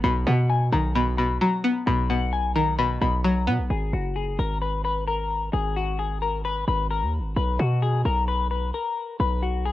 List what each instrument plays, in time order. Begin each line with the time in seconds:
0.04 808-style bass B1, synth pluck B2, clean electric guitar B5
0.27 808-style bass B2, synth pluck B2, clean electric guitar F#5
0.50 clean electric guitar G#5
0.72 808-style bass B1, synth pluck D#3, clean electric guitar A#5
0.95 synth pluck B2, clean electric guitar B5
1.18 synth pluck B2, clean electric guitar B5
1.41 synth pluck F#3, clean electric guitar A#5
1.64 synth pluck B3
1.87 808-style bass B1, synth pluck B2, clean electric guitar B5
2.10 synth pluck B2, clean electric guitar F#5
2.33 clean electric guitar G#5
2.56 synth pluck D#3, clean electric guitar A#5
2.79 synth pluck B2, clean electric guitar B5
3.01 808-style bass B1, synth pluck B2, clean electric guitar B5
3.24 synth pluck F#3, clean electric guitar A#5
3.47 808-style bass B2, synth pluck B3
3.59 808-style bass B1
3.70 808-style bass G#1, clean electric guitar G#4
3.93 808-style bass F#1, clean electric guitar F#4
4.16 clean electric guitar G#4
4.39 808-style bass G#1, clean electric guitar A#4
4.62 clean electric guitar B4
4.85 clean electric guitar B4
5.07 clean electric guitar A#4
5.53 808-style bass G#1, clean electric guitar G#4
5.76 clean electric guitar F#4
5.99 clean electric guitar G#4
6.22 clean electric guitar A#4
6.45 clean electric guitar B4
6.68 808-style bass G#1, clean electric guitar B4
6.91 clean electric guitar A#4
7.02 808-style bass D#2
7.19 808-style bass G#1
7.37 808-style bass B1, clean electric guitar B4
7.59 808-style bass B2, clean electric guitar F#4
7.82 clean electric guitar G#4
8.05 808-style bass B1, clean electric guitar A#4
8.28 clean electric guitar B4
8.51 clean electric guitar B4
8.74 clean electric guitar A#4
9.20 808-style bass B1, clean electric guitar B4
9.43 clean electric guitar F#4
9.65 clean electric guitar G#4